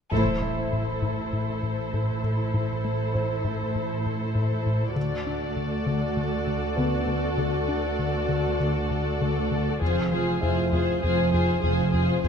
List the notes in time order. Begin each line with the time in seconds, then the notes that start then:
0.11 A1 A2 E4 A4 C5, impact
0.41 A3 E5
0.73 A2
1.02 A2
1.33 A2
1.63 A2
1.94 A2
2.24 A2
2.54 A2
2.85 A3
3.14 A2 C5
3.44 A2
3.75 A2
4.06 A2
4.35 A2
4.66 A2
4.96 D2 D3 F#4 A4 D5
5.27 D4
5.57 D3
5.87 D3
6.17 D3
6.47 D3
6.77 D3 B3 B4
7.08 D3
7.38 D3
7.68 D4
7.99 D3
8.29 D3
8.60 D3
8.91 D3
9.21 D3
9.51 D3
9.80 F1 F2 F4 G#4 C5
10.11 F3 F4 G#4 C5
10.41 F1 F2 E4 F4 G#4 C5 E5
10.72 F2 F4 G#4 C5
11.01 F1 F2 F4 G#4 C5
11.32 F2 F4 G#4 C5
11.62 F1 F2 F4 G#4 C5
11.93 F2 F4 G#4 C5
12.23 F1 F2 F4 G#4 C5